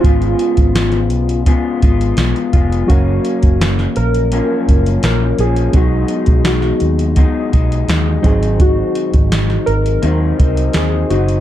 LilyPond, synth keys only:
\new Staff \with { instrumentName = "Synth keys" } { \time 4/4 \key fis \major \tempo 4 = 84 eis'4 eis'4 r2 | fis'4. ais'4. ais'8 gis'8 | fis'4 fis'4 r2 | fis'4. ais'4. gis'8 fis'8 | }